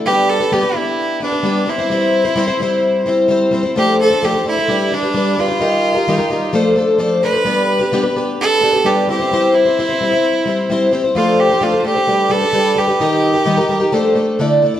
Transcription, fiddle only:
\new Staff \with { instrumentName = "Fiddle" } { \time 4/4 \key g \mixolydian \tempo 4 = 130 g'8 a'8 g'8 e'4 d'4 e'8~ | e'2~ e'8 r4. | g'8 a'8 g'8 e'4 d'4 f'8~ | f'2~ f'8 r4 b'8~ |
b'4. r8 a'4 g'8 g'8~ | g'8 e'2. r8 | f'8 g'8 f'8 g'4 a'4 g'8~ | g'2~ g'8 r4. | }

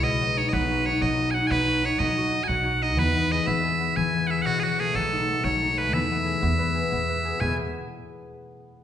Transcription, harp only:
\new Staff \with { instrumentName = "Harp" } { \time 9/8 \key e \major \tempo 4. = 122 b,8 fis8 dis'8 fis8 fis'8 dis'8 fis8 fis'8 dis'8 | fis8 fis'8 dis'8 fis8 fis'8 dis'8 fis8 fis'8 dis'8 | e8 b8 gis'8 b8 gis'8 b8 e8 b8 gis'8 | b,8 fis8 a8 fis8 dis'8 a8 fis8 dis'8 a8 |
e8 b8 gis'8 b8 b'8 gis'8 b8 b'8 gis'8 | <e, b, e b gis' b'>8 r1 | }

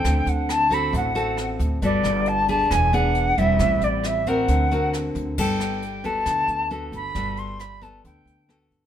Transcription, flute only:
\new Staff \with { instrumentName = "Flute" } { \time 4/4 \key g \major \tempo 4 = 135 g''8 fis''8 a''8 b''8 fis''4. r8 | d''4 a''8 a''8 gis''8 fis''4 e''8~ | e''8 d''8 e''8 fis''4. r4 | g''4. a''4. r8 b''8~ |
b''8 c'''8 b''8 a''8 g''4. r8 | }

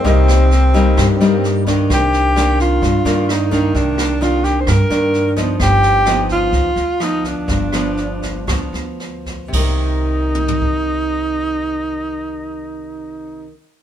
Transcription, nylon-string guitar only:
\new Staff \with { instrumentName = "Nylon-string guitar" } { \time 4/4 \key c \minor \tempo 4 = 128 << { <g bes ees'>4 r8 <g bes ees'>4 <g bes ees'>4 <ees bes d'>8~ | <ees bes d'>4 <ees bes d'>4 r8 <ees bes d'>4 <ees bes d'>8~ | <ees bes d'>4 <ees bes d'>4 r8 <ees bes d'>4 <f b ees'>8~ | <f b ees'>4 <f b ees'>4. r8 <f b>4~ |
<f b>8 <f b>4. <f b>2 | <c ees bes>1~ | <c ees bes>1 | } \\ { c2 g,2 | c2 g,2 | c2 g,2 | g,2 r2 |
g,2 r2 | r1 | r1 | } >> }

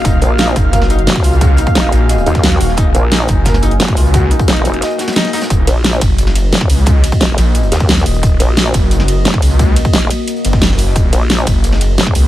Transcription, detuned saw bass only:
\new Staff \with { instrumentName = "Detuned saw bass" } { \clef bass \time 4/4 \key ees \minor \tempo 4 = 176 ees,,8 r4 ges,,4. r8 des,8~ | des,8 r4 bes,,4 r4 ees,,8 | ees,,8 r4 ges,,4. r8 des,8~ | des,8 r2. r8 |
ees,,8 r4 ges,,4. r8 des,8~ | des,8 r4 bes,,4 r4 ees,,8 | ees,,8 r4 ges,,4. r8 des,8~ | des,8 r2 ges,,4. |
ees,,8 r4 ges,,4. r8 des,8 | }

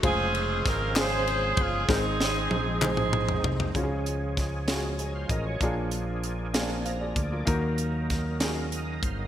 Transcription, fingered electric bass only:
\new Staff \with { instrumentName = "Fingered electric bass" } { \clef bass \time 6/8 \key des \major \tempo 4. = 64 f,,4 aes,,4. g,,8 | aes,,4 bes,,4. c,8 | des,2~ des,8 a,,8 | bes,,2~ bes,,8 d,8 |
ees,2~ ees,8 g,,8 | }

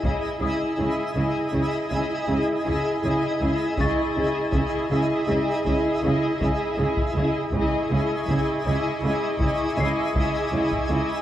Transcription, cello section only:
\new Staff \with { instrumentName = "Cello section" } { \clef bass \time 5/4 \key cis \minor \tempo 4 = 80 cis8 cis8 cis8 cis8 cis8 cis8 cis8 cis8 cis8 cis8 | cis8 cis8 cis8 cis8 cis8 cis8 cis8 cis8 cis8 cis8 | cis8 cis8 cis8 cis8 cis8 cis8 cis8 cis8 cis8 cis8 | }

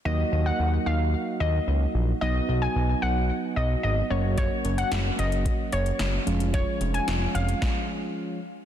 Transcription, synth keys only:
\new Staff \with { instrumentName = "Synth keys" } { \time 4/4 \key ees \minor \tempo 4 = 111 <ges bes ees' ges'>1 | <fis b dis' fis'>2.~ <fis b dis' fis'>8 <ges bes des' ges'>8~ | <ges bes des' ges'>2.~ <ges bes des' ges'>8 <f aes des' f'>8~ | <f aes des' f'>2.~ <f aes des' f'>8 r8 | }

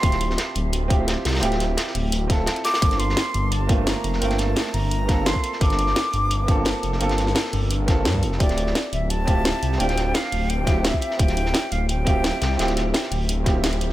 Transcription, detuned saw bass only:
\new Staff \with { instrumentName = "Detuned saw bass" } { \clef bass \time 4/4 \key g \minor \tempo 4 = 172 d,,4 r8 d,,4. r8 c,8 | d,,4 r8 d,,4. r4 | g,,4 r8 g,,4. r8 f,,8 | g,,4 r8 g,,4. r4 |
g,,4 r8 g,,4. r8 f,,8 | g,,4 r8 g,,4. g,8 f,,8 | d,,4 r8 d,,4. r8 c,8 | d,,4 r8 d,,4. r4 |
d,,4 r8 d,,4. r8 c,8 | d,,4 r8 d,,4. d,,4 | }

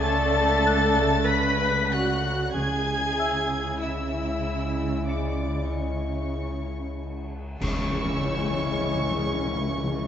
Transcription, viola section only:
\new Staff \with { instrumentName = "Viola section" } { \time 4/4 \key cis \phrygian \tempo 4 = 95 a'2 b'4 fis'4 | gis'2 e'2 | d''4 cis'2~ cis'8 r8 | cis'1 | }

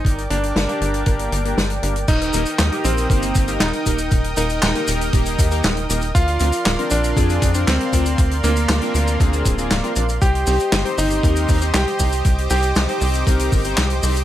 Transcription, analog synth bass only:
\new Staff \with { instrumentName = "Analog synth bass" } { \clef bass \time 4/4 \key ees \major \tempo 4 = 118 g,,8 g,,8 g,,8 g,,8 g,,8 g,,8 g,,8 g,,8 | ees,,8 ees,,8 ees,8 bes,,8 g,,8 g,,8 ees,,8 ees,,8 | ees,,8 ees,,8 ees,,8 ees,,8 ees,,8 ees,8 ees,,8 ees,,8 | d,8 d,8 d,,8 bes,,8 f,8 f,8 d,8 d,8 |
d,8 d,8 d,8 d,8 d,8 d,,8 d,,8 bes,,8 | c,8 c,8 g,,8 g,,8 ees,8 ees,8 c,8 c,8 | c,8 c,8 c,8 c,8 c,8 g,,8 c,8 c,8 | }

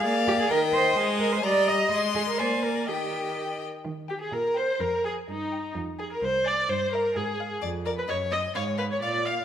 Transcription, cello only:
\new Staff \with { instrumentName = "Cello" } { \time 2/4 \key ees \major \tempo 4 = 128 r8 g'16 aes'16 bes'8 c''8 | r8 bes'16 c''16 d''8 ees''8 | r8 aes'16 bes'16 c''8 bes'8 | g'4. r8 |
ees4 bes,4 | f,4 g,4 | f,4 c,4 | g,4 aes,4 |
\key des \mixolydian f,4 ges,4 | aes,4 bes,4 | }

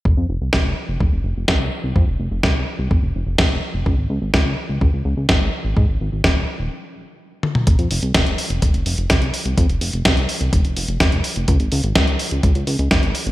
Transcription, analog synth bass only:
\new Staff \with { instrumentName = "Analog synth bass" } { \clef bass \time 4/4 \key f \minor \tempo 4 = 126 f,,16 f,16 f,,16 c,16 f,,16 f,,16 r16 f,,16 f,,16 f,,16 f,,16 f,,16 c,16 c,16 r16 c,16 | f,16 f,,16 f,,16 f,,16 c,16 c,16 r16 c,16 f,,16 f,,16 f,,16 f,,16 f,,16 f,,16 r16 f,,16 | des,16 aes,,16 des,16 aes,,16 des,16 des,16 r16 des,16 des,16 des,16 des,16 des,16 aes,,16 aes,,16 r16 aes,,16 | aes,16 aes,,16 aes,,16 aes,,16 ees,,16 ees,,16 r16 ees,,16 r2 |
f,,16 f,16 f,,16 c,16 f,,16 f,,16 r16 f,,16 f,,16 f,,16 f,,16 f,,16 c,16 c,16 r16 c,16 | f,16 f,,16 f,,16 f,,16 c,16 c,16 r16 c,16 f,,16 f,,16 f,,16 f,,16 f,,16 f,,16 r16 f,,16 | des,16 aes,,16 des,16 aes,,16 des,16 des,16 r16 des,16 des,16 des,16 des,16 des,16 aes,,16 aes,,16 r16 aes,,16 | }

